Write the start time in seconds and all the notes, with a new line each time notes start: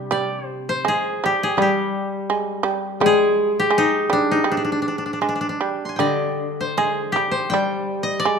Already playing: C3 G3 C4 D4 G4 C5 D5
0.11 G3 D5
0.46 C5
0.69 C5
0.85 G#3 G#4
1.24 G3 G4
1.43 G#4
1.57 G3
1.62 G4
2.30 G#3
2.63 G3
3.00 G3 G#3
3.06 G#4
3.59 G4
3.71 G#3
3.78 D#4
4.10 G3 D4
4.31 D#4
4.44 G3
4.52 D4
4.57 D4
4.64 D4
4.72 D4
4.82 D4
4.88 D4
4.98 D4
5.06 D4
5.13 D4
5.21 G#3 D4
5.29 D4
5.35 D4
5.41 D4
5.49 D4
5.61 G3
5.85 G#5 C6
5.96 D3 G3 D5 D#5 G5
6.61 C5
6.78 G#3 G#4
7.12 G3 G4
7.31 C5
7.50 G3 G5
8.03 D#5
8.20 D5
8.25 G#3